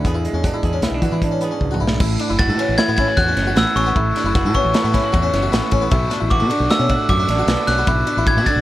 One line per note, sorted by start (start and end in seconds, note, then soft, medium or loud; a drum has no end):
0.00 1.03 D3 medium
0.04 0.27 E2 medium
0.04 1.61 E2 medium
0.04 0.14 B3 medium
0.04 0.63 G#4 medium
0.04 kick loud
0.04 closed hi-hat medium
0.14 0.34 E4 medium
0.24 1.99 G#3 medium
0.24 closed hi-hat medium
0.33 0.48 E2 medium
0.33 0.44 C#4 medium
0.43 0.83 D4 medium
0.43 0.53 F#4 medium
0.43 kick loud
0.43 closed hi-hat medium
0.54 0.73 E4 medium
0.63 0.78 E2 medium
0.63 1.42 G#4 medium
0.63 kick medium
0.63 closed hi-hat medium
0.73 0.83 C#4 medium
0.82 0.90 B1 medium
0.82 0.94 B3 medium
0.82 1.03 E4 medium
0.82 snare medium
0.82 closed hi-hat medium
0.91 0.99 B1 medium
0.91 1.23 D4 soft
1.02 1.10 E3 medium
1.02 1.98 E3 medium
1.02 1.12 F#4 medium
1.02 kick medium
1.02 closed hi-hat medium
1.12 1.50 E3 medium
1.12 1.32 E4 medium
1.22 1.99 D4 medium
1.22 kick medium
1.22 closed hi-hat medium
1.31 1.41 C#4 medium
1.41 1.51 B3 medium
1.41 1.99 G#4 medium
1.41 closed hi-hat soft
1.51 1.71 C#4 medium
1.61 1.79 C#2 medium
1.61 1.81 F#2 medium
1.61 kick medium
1.71 1.81 F#4 medium
1.71 mid tom medium
1.80 1.98 B1 medium
1.80 2.01 G#2 medium
1.80 1.99 E4 medium
1.87 snare medium
2.00 2.16 A1 loud
2.00 3.18 A2 medium
2.00 2.20 E4 medium
2.00 kick loud
2.00 crash loud
2.19 2.30 D4 medium
2.19 ride medium
2.29 2.50 F#1 medium
2.29 2.49 E4 medium
2.39 2.98 F#4 medium
2.39 2.79 A6 loud
2.39 kick loud
2.39 snare soft
2.39 ride loud
2.48 2.56 A2 medium
2.48 2.59 A4 medium
2.58 3.93 E3 medium
2.58 2.79 C#4 medium
2.58 ride medium
2.69 2.76 A1 loud
2.78 4.74 A3 medium
2.78 2.88 E4 medium
2.78 2.95 G#6 loud
2.78 snare loud
2.78 ride medium
2.88 3.03 A2 medium
2.88 2.98 B3 medium
2.97 3.18 C#4 medium
2.97 3.08 E4 medium
2.97 3.06 G#6 medium
2.97 kick medium
2.97 ride medium
3.08 3.96 F#4 medium
3.17 3.57 E2 medium
3.17 3.33 E2 loud
3.17 3.27 F#4 medium
3.17 3.58 F#6 loud
3.17 kick medium
3.17 snare soft
3.17 ride medium
3.28 3.47 C#4 medium
3.37 3.52 F#1 loud
3.37 3.94 C#4 medium
3.37 snare soft
3.37 ride medium
3.47 3.57 F#4 medium
3.56 3.64 A1 medium
3.56 3.94 A2 medium
3.56 3.76 B3 medium
3.56 3.77 E6 medium
3.56 snare loud
3.56 ride loud
3.76 3.91 A1 loud
3.76 3.86 C#4 medium
3.76 4.54 C#6 medium
3.76 ride medium
3.86 3.96 B3 medium
3.95 4.11 A1 medium
3.95 5.13 A2 medium
3.95 4.16 E4 medium
3.95 kick loud
3.95 ride loud
4.16 4.26 D4 medium
4.16 snare soft
4.16 ride medium
4.24 4.46 F#1 medium
4.24 4.45 E4 medium
4.35 4.93 F#4 medium
4.35 kick loud
4.35 snare soft
4.35 ride loud
4.45 4.52 A2 medium
4.45 4.55 A4 medium
4.54 5.89 E3 medium
4.54 4.74 C#4 medium
4.54 5.68 C#6 medium
4.54 kick medium
4.54 ride medium
4.64 4.72 A1 medium
4.74 5.95 A3 medium
4.74 4.84 E4 medium
4.74 snare loud
4.74 ride loud
4.84 4.99 A2 medium
4.84 4.94 B3 medium
4.93 5.13 C#4 medium
4.93 5.04 E4 medium
4.93 kick medium
4.93 snare soft
4.93 ride medium
5.04 5.92 F#4 medium
5.12 5.52 E2 medium
5.12 5.29 E2 medium
5.12 5.23 F#4 medium
5.12 kick loud
5.12 ride medium
5.22 5.42 C#4 medium
5.33 5.48 F#1 medium
5.33 5.90 C#4 medium
5.33 snare soft
5.33 ride medium
5.43 5.52 F#4 medium
5.52 5.60 A1 medium
5.52 5.92 A2 medium
5.52 5.72 B3 medium
5.52 snare loud
5.52 ride medium
5.72 5.87 A1 loud
5.72 5.82 C#4 medium
5.72 kick medium
5.72 ride medium
5.82 5.92 B3 medium
5.91 6.07 B1 loud
5.91 6.51 B2 medium
5.91 6.11 E4 loud
5.91 kick loud
5.91 ride loud
6.10 6.21 D4 medium
6.10 snare soft
6.10 ride medium
6.20 6.43 A1 medium
6.20 6.40 E4 medium
6.30 6.90 F#4 medium
6.30 6.67 D6 medium
6.30 kick loud
6.30 ride loud
6.40 6.49 B2 medium
6.40 6.50 A4 medium
6.50 8.47 D3 medium
6.50 6.70 D4 medium
6.50 ride medium
6.60 6.68 B1 loud
6.70 7.91 A3 medium
6.70 6.80 F#4 medium
6.70 7.11 E6 medium
6.70 snare loud
6.70 ride loud
6.79 6.95 B2 medium
6.79 6.89 C#4 medium
6.89 7.09 D4 medium
6.89 8.27 F#4 medium
6.89 kick medium
6.89 ride medium
7.09 7.24 F#2 medium
7.09 7.49 F#2 medium
7.09 7.19 F#4 medium
7.09 7.70 D6 medium
7.09 kick loud
7.09 ride loud
7.19 7.39 D4 medium
7.28 7.43 A1 medium
7.28 7.86 D4 medium
7.28 snare soft
7.28 ride medium
7.38 7.48 F#4 medium
7.47 7.55 B1 medium
7.47 7.86 B2 medium
7.47 7.68 B3 medium
7.47 snare loud
7.47 ride loud
7.67 7.83 B1 loud
7.67 7.78 C#4 medium
7.67 8.04 F#6 loud
7.67 snare soft
7.67 ride medium
7.78 7.88 B3 medium
7.87 8.03 B1 medium
7.87 8.47 B2 medium
7.87 8.07 E4 loud
7.87 kick loud
7.87 ride medium
8.07 8.17 D4 medium
8.07 ride medium
8.17 8.38 A1 medium
8.17 8.37 E4 medium
8.26 8.38 E4 medium
8.26 8.47 G#6 loud
8.26 kick loud
8.26 ride loud
8.37 8.44 B2 medium
8.37 8.61 F#4 medium
8.37 8.47 A4 medium
8.46 8.61 D3 medium
8.46 8.61 D4 medium
8.46 8.61 A6 loud
8.46 kick medium
8.46 ride medium
8.56 8.61 B1 loud